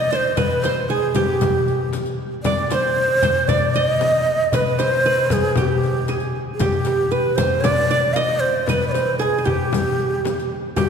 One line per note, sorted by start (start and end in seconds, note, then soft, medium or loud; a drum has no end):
0.00 0.13 D#5 loud
0.00 0.82 D#5 medium
0.11 0.43 C5 medium
0.11 0.16 D5 medium
0.15 0.39 C5 medium
0.37 0.71 B4 medium
0.37 0.64 B4 loud
0.37 riq medium
0.37 darbuka dum loud
0.37 frame drum medium
0.51 riq soft
0.63 0.91 C5 medium
0.63 1.71 C5 medium
0.63 riq medium
0.63 darbuka tek medium
0.63 frame drum medium
0.89 1.17 G#4 medium
0.89 1.22 G#4 medium
1.15 2.19 G4 medium
1.15 2.41 G4 medium
1.15 riq medium
1.15 darbuka dum medium
1.15 frame drum medium
1.41 riq medium
1.41 darbuka dum medium
1.41 frame drum medium
1.68 riq soft
1.93 riq soft
1.93 darbuka tek medium
1.93 frame drum medium
2.06 riq soft
2.43 2.70 D5 medium
2.43 3.44 D5 medium
2.43 riq medium
2.43 darbuka dum medium
2.43 frame drum loud
2.58 riq soft
2.70 3.23 C5 medium
2.70 2.75 D5 loud
2.70 riq medium
2.70 darbuka tek medium
2.70 frame drum medium
2.74 3.49 C5 loud
3.23 4.29 C5 medium
3.23 riq medium
3.23 darbuka dum medium
3.23 frame drum loud
3.48 3.76 D5 loud
3.48 3.82 D5 medium
3.48 riq medium
3.48 frame drum loud
3.48 darbuka dum loud
3.74 4.56 D#5 loud
3.74 4.71 D#5 medium
3.74 riq soft
4.01 riq soft
4.01 darbuka tek medium
4.01 frame drum medium
4.14 riq soft
4.52 4.86 B4 medium
4.52 4.80 B4 medium
4.52 riq medium
4.52 darbuka dum loud
4.52 frame drum medium
4.66 riq soft
4.66 darbuka ka soft
4.79 5.34 C5 loud
4.79 5.12 C5 medium
4.79 riq soft
4.79 darbuka tek medium
4.79 frame drum medium
5.05 6.15 B4 medium
5.05 riq soft
5.05 darbuka ka soft
5.30 5.61 G#4 medium
5.30 riq medium
5.30 frame drum medium
5.30 darbuka dum medium
5.44 riq soft
5.55 6.15 G4 medium
5.55 6.36 G4 medium
5.55 riq medium
5.55 frame drum medium
5.55 darbuka dum loud
5.83 riq soft
6.08 6.66 G#4 medium
6.08 riq soft
6.08 darbuka tek medium
6.08 frame drum medium
6.20 riq soft
6.55 6.63 G#4 medium
6.59 7.86 G4 medium
6.59 7.13 G4 medium
6.59 riq medium
6.59 frame drum loud
6.59 darbuka dum loud
6.72 riq soft
6.85 riq medium
6.85 darbuka tek medium
6.85 frame drum medium
7.12 7.44 B4 medium
7.12 7.37 B4 medium
7.36 7.62 C5 medium
7.36 8.43 C5 medium
7.36 riq medium
7.36 frame drum loud
7.36 darbuka dum medium
7.61 8.15 D5 loud
7.61 7.90 D5 medium
7.61 riq medium
7.61 frame drum loud
7.61 darbuka dum medium
7.90 8.22 D5 medium
7.90 riq soft
8.14 9.11 D#5 medium
8.14 8.19 F5 medium
8.14 riq soft
8.14 darbuka tek medium
8.14 frame drum medium
8.18 8.41 D#5 loud
8.29 riq soft
8.40 8.68 C5 medium
8.67 8.87 B4 medium
8.67 9.79 B4 medium
8.67 riq medium
8.67 frame drum loud
8.67 darbuka dum medium
8.82 riq soft
8.88 8.93 D5 medium
8.92 9.18 C5 medium
8.92 riq soft
8.92 darbuka tek medium
8.92 frame drum medium
9.18 9.38 G#4 medium
9.18 9.46 G#4 medium
9.18 9.23 A4 medium
9.38 9.51 G#4 soft
9.45 10.50 G4 medium
9.45 10.71 G4 medium
9.45 frame drum medium
9.45 darbuka dum medium
9.73 riq medium
9.73 frame drum loud
9.73 darbuka dum medium
10.00 riq soft
10.25 riq soft
10.25 darbuka tek medium
10.25 frame drum medium
10.40 riq soft
10.76 10.89 G4 medium
10.76 riq medium
10.76 darbuka dum medium
10.76 frame drum loud